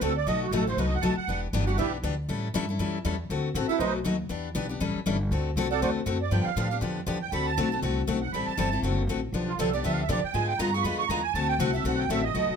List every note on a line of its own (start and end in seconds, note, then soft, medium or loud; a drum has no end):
0.01 0.26 D2 medium
0.01 0.12 D3 medium
0.01 0.12 A3 medium
0.01 0.12 C4 loud
0.01 0.12 F#4 medium
0.01 0.12 A4 medium
0.01 0.16 A4 medium
0.17 0.27 D5 medium
0.26 0.51 B1 medium
0.26 0.45 B2 medium
0.26 0.45 F#3 medium
0.26 0.46 A3 medium
0.26 0.46 D#4 medium
0.26 0.46 F#4 medium
0.26 0.41 D#5 medium
0.43 0.53 F#4 medium
0.51 0.76 A1 medium
0.51 0.63 B2 medium
0.51 0.63 F#3 loud
0.51 0.63 A3 loud
0.51 0.63 D#4 medium
0.51 0.63 F#4 loud
0.51 0.67 A4 medium
0.67 0.77 A3 medium
0.67 0.78 D#4 medium
0.67 0.77 F#4 medium
0.67 0.78 C5 medium
0.77 1.01 C2 medium
0.77 0.96 B2 medium
0.77 0.96 F#3 medium
0.77 0.96 A3 medium
0.77 0.96 D#4 medium
0.77 0.96 F#4 medium
0.77 0.86 B4 medium
0.87 0.94 D#5 medium
0.95 1.03 F#5 medium
1.02 1.16 B1 medium
1.02 1.13 B2 medium
1.02 1.13 F#3 medium
1.02 1.13 A3 medium
1.02 1.13 D#4 medium
1.02 1.13 F#4 medium
1.02 1.16 A5 medium
1.17 1.40 F#5 medium
1.17 muted upright bass stroke soft
1.28 1.52 E1 medium
1.28 1.46 E3 medium
1.28 1.46 B3 medium
1.28 1.47 D4 medium
1.28 1.47 G4 medium
1.53 1.77 G1 medium
1.53 1.63 E3 medium
1.53 1.64 B3 medium
1.53 1.64 D4 loud
1.53 1.64 G4 loud
1.66 1.77 B3 medium
1.66 1.78 D4 soft
1.66 1.78 F#4 medium
1.66 1.78 G4 medium
1.66 1.77 F#5 medium
1.78 2.02 B1 medium
1.78 1.96 E3 medium
1.78 1.96 B3 medium
1.78 1.97 D4 medium
1.78 1.92 E4 medium
1.78 1.92 G4 medium
1.78 1.97 G4 medium
1.78 1.92 B4 medium
1.78 1.92 E5 medium
2.03 2.27 D2 medium
2.03 2.14 E3 medium
2.03 2.14 B3 medium
2.03 2.14 D4 medium
2.03 2.14 G4 medium
2.29 2.53 A2 medium
2.29 2.47 E3 medium
2.29 2.47 G3 medium
2.29 2.47 C#4 medium
2.29 2.47 E4 medium
2.29 2.47 A4 medium
2.54 2.78 G2 medium
2.54 2.64 E3 medium
2.54 2.64 G3 medium
2.54 2.65 C#4 loud
2.54 2.65 E4 loud
2.54 2.65 A4 loud
2.70 2.79 C#4 soft
2.70 2.79 E4 medium
2.79 3.03 F#2 medium
2.79 2.97 E3 medium
2.79 2.97 G3 medium
2.79 2.98 C#4 medium
2.79 2.98 E4 medium
2.79 2.98 A4 medium
3.05 3.29 E2 medium
3.05 3.15 E3 medium
3.05 3.15 G3 medium
3.05 3.15 C#4 medium
3.05 3.15 E4 medium
3.05 3.15 A4 medium
3.30 3.54 D2 medium
3.30 3.48 D3 medium
3.30 3.48 A3 medium
3.30 3.48 C4 medium
3.30 3.48 F#4 medium
3.30 3.48 A4 medium
3.54 3.68 A1 medium
3.54 3.65 D3 medium
3.54 3.65 A3 loud
3.54 3.65 C4 loud
3.54 3.65 F#4 loud
3.54 3.66 A4 loud
3.68 3.80 C4 soft
3.68 3.79 E4 medium
3.68 3.80 F#4 medium
3.68 3.79 A4 medium
3.68 3.79 E5 medium
3.68 muted upright bass stroke soft
3.78 4.04 B1 medium
3.78 3.98 B2 medium
3.78 3.98 F#3 medium
3.78 3.98 A3 medium
3.78 3.94 D#4 medium
3.78 3.98 D#4 medium
3.78 3.98 F#4 medium
3.78 3.93 B4 medium
3.78 3.93 C5 medium
3.78 3.93 D#5 medium
4.04 4.28 D#2 loud
4.04 4.15 B2 medium
4.04 4.15 F#3 medium
4.04 4.15 A3 medium
4.04 4.16 D#4 medium
4.04 4.16 F#4 loud
4.29 4.54 E2 medium
4.29 4.48 E3 medium
4.29 4.48 B3 medium
4.29 4.48 D4 medium
4.29 4.48 G4 medium
4.55 4.79 B1 medium
4.55 4.65 E3 loud
4.55 4.65 B3 loud
4.55 4.66 D4 loud
4.55 4.66 G4 loud
4.69 4.81 B3 soft
4.69 4.80 D4 medium
4.69 4.80 G4 medium
4.80 4.94 A1 medium
4.80 4.98 E3 medium
4.80 4.99 G3 medium
4.80 4.99 C#4 medium
4.80 4.99 E4 medium
4.80 4.99 A4 medium
4.95 muted upright bass stroke soft
5.06 5.30 G1 loud
5.06 5.16 E3 medium
5.06 5.16 G3 medium
5.06 5.16 C#4 medium
5.06 5.16 E4 medium
5.06 5.17 A4 medium
5.31 5.55 D2 medium
5.31 5.49 D3 medium
5.31 5.49 A3 medium
5.31 5.50 C4 medium
5.31 5.50 F#4 medium
5.31 5.50 A4 medium
5.56 5.80 C2 medium
5.56 5.67 D3 medium
5.56 5.67 A3 medium
5.56 5.67 C4 medium
5.56 5.67 F#4 loud
5.56 5.67 A4 loud
5.71 5.82 C4 soft
5.71 5.81 F#4 soft
5.71 5.81 A4 medium
5.71 5.80 D5 medium
5.71 5.79 F#5 medium
5.71 5.81 A5 medium
5.81 6.06 E2 medium
5.81 6.00 D3 medium
5.81 6.00 A3 medium
5.81 6.00 C4 medium
5.81 5.90 F#4 medium
5.81 6.00 F#4 medium
5.81 6.00 A4 medium
5.81 5.90 C5 medium
5.81 5.90 D5 medium
5.81 5.90 F#5 medium
6.06 6.31 F#2 medium
6.06 6.16 D3 medium
6.06 6.17 A3 medium
6.06 6.17 C4 medium
6.06 6.17 F#4 medium
6.06 6.17 A4 medium
6.22 6.32 D5 medium
6.31 6.45 G2 medium
6.31 6.49 D3 medium
6.31 6.49 F3 medium
6.31 6.50 B3 medium
6.31 6.50 D4 medium
6.31 6.50 G4 medium
6.31 6.45 G5 medium
6.44 6.78 F5 medium
6.44 muted upright bass stroke soft
6.56 6.80 A2 medium
6.56 6.67 D3 medium
6.56 6.67 F3 medium
6.56 6.67 B3 medium
6.56 6.67 D4 loud
6.56 6.67 G4 loud
6.71 6.81 B3 soft
6.71 6.81 D4 medium
6.71 6.81 G4 medium
6.81 7.06 F2 medium
6.81 6.99 D3 medium
6.81 7.00 F3 medium
6.81 7.00 B3 medium
6.81 7.00 D4 medium
6.81 7.00 G4 medium
7.06 7.31 E2 loud
7.06 7.17 D3 medium
7.06 7.17 F3 medium
7.06 7.17 B3 medium
7.06 7.17 D4 medium
7.06 7.18 G4 medium
7.22 7.32 G5 medium
7.32 7.56 D2 medium
7.32 7.50 D3 medium
7.32 7.50 A3 medium
7.32 7.50 C4 medium
7.32 7.50 F#4 medium
7.32 7.51 A4 medium
7.32 7.46 B5 loud
7.47 7.80 A5 medium
7.57 7.81 B1 medium
7.57 7.68 D3 medium
7.57 7.68 A3 medium
7.57 7.68 C4 medium
7.57 7.68 F#4 medium
7.57 7.68 A4 loud
7.72 7.82 C4 soft
7.72 7.82 F#4 medium
7.72 7.82 A4 medium
7.82 8.07 C2 medium
7.82 8.00 D3 medium
7.82 8.01 A3 medium
7.82 8.01 C4 medium
7.82 8.01 F#4 medium
7.82 8.01 A4 medium
8.07 8.32 B1 medium
8.07 8.18 D3 medium
8.07 8.18 A3 medium
8.07 8.18 C4 medium
8.07 8.18 F#4 medium
8.07 8.18 A4 medium
8.21 8.32 F#5 medium
8.32 8.46 A1 medium
8.32 8.51 E3 medium
8.32 8.51 G3 medium
8.32 8.52 C4 medium
8.32 8.52 E4 medium
8.32 8.52 A4 medium
8.32 8.46 B5 medium
8.46 8.80 A5 medium
8.46 muted upright bass stroke soft
8.57 8.82 G1 medium
8.57 8.68 E3 medium
8.57 8.68 G3 medium
8.57 8.68 C4 loud
8.57 8.68 E4 medium
8.57 8.68 A4 loud
8.72 8.83 C4 soft
8.72 8.83 E4 medium
8.72 8.83 A4 medium
8.82 9.07 F#1 medium
8.82 9.01 D3 medium
8.82 9.01 A3 medium
8.82 9.02 C4 medium
8.82 9.02 F#4 medium
8.82 9.02 A4 medium
9.07 9.32 A1 medium
9.07 9.19 D3 medium
9.07 9.19 A3 medium
9.07 9.19 C4 medium
9.07 9.19 F#4 medium
9.07 9.19 A4 medium
9.32 9.57 B1 medium
9.32 9.52 D3 medium
9.32 9.52 F3 medium
9.32 9.52 B3 medium
9.32 9.52 D4 medium
9.32 9.52 G4 medium
9.48 9.58 F4 medium
9.59 9.83 C2 medium
9.59 9.69 D3 medium
9.59 9.69 F3 medium
9.59 9.69 B3 medium
9.59 9.69 D4 loud
9.59 9.69 G4 loud
9.59 9.73 A4 medium
9.73 9.83 B3 soft
9.73 9.84 D4 medium
9.73 9.83 G4 medium
9.73 9.84 D5 medium
9.83 10.08 D2 medium
9.83 10.02 D3 medium
9.83 10.02 F3 medium
9.83 10.02 B3 medium
9.83 10.02 D4 medium
9.83 10.03 G4 medium
9.83 9.92 E5 medium
9.93 10.01 F5 medium
10.02 10.09 E5 medium
10.09 10.22 B2 medium
10.09 10.19 D3 medium
10.09 10.19 F3 medium
10.09 10.19 B3 medium
10.09 10.19 D4 medium
10.09 10.19 G4 loud
10.09 10.24 D5 medium
10.24 10.34 G5 medium
10.24 muted upright bass stroke soft
10.34 10.58 G#2 medium
10.34 10.52 D3 medium
10.34 10.52 G#3 medium
10.34 10.52 B3 medium
10.34 10.52 F4 medium
10.34 10.52 G#4 medium
10.34 10.48 G#5 medium
10.48 10.58 G5 medium
10.59 10.83 G2 medium
10.59 10.69 D3 medium
10.59 10.70 G#3 loud
10.59 10.70 B3 loud
10.59 10.70 F4 loud
10.59 10.70 G#4 loud
10.59 10.73 A#5 medium
10.73 10.84 B3 soft
10.73 10.84 F4 medium
10.73 10.84 G#4 medium
10.73 10.84 C#6 loud
10.82 11.08 F2 medium
10.82 11.02 D3 medium
10.82 11.03 G#3 medium
10.82 11.03 B3 medium
10.82 11.03 F4 medium
10.82 11.03 G#4 medium
10.82 10.97 B5 medium
10.99 11.09 C#6 loud
11.08 11.33 E2 medium
11.08 11.20 D3 medium
11.08 11.20 G#3 medium
11.08 11.20 B3 medium
11.08 11.20 F4 medium
11.08 11.20 G#4 loud
11.08 11.23 A#5 medium
11.22 11.33 G#5 medium
11.33 11.58 D2 medium
11.33 11.53 D3 medium
11.33 11.53 A3 medium
11.33 11.53 C4 medium
11.33 11.53 F#4 medium
11.33 11.53 A4 medium
11.33 11.48 A5 loud
11.48 11.59 G5 medium
11.59 11.83 C2 medium
11.59 11.70 D3 medium
11.59 11.70 A3 loud
11.59 11.70 C4 medium
11.59 11.70 F#4 loud
11.59 11.70 A4 loud
11.59 11.73 F#5 medium
11.73 11.84 C4 soft
11.73 11.85 F#4 medium
11.73 11.84 A4 medium
11.73 11.84 E5 medium
11.84 12.08 B1 medium
11.84 12.03 D3 medium
11.84 12.03 A3 medium
11.84 12.03 C4 medium
11.84 12.03 F#4 medium
11.84 12.03 A4 medium
11.84 12.00 F#5 medium
11.99 12.10 G5 medium
12.09 12.34 A1 loud
12.09 12.20 D3 medium
12.09 12.20 A3 medium
12.09 12.21 C4 medium
12.09 12.21 F#4 medium
12.09 12.20 A4 medium
12.09 12.24 E5 medium
12.24 12.56 D#5 medium
12.34 12.48 B1 medium
12.34 12.53 B2 medium
12.34 12.53 F#3 medium
12.34 12.53 A3 medium
12.34 12.53 D#4 medium
12.34 12.53 F#4 medium
12.49 muted upright bass stroke soft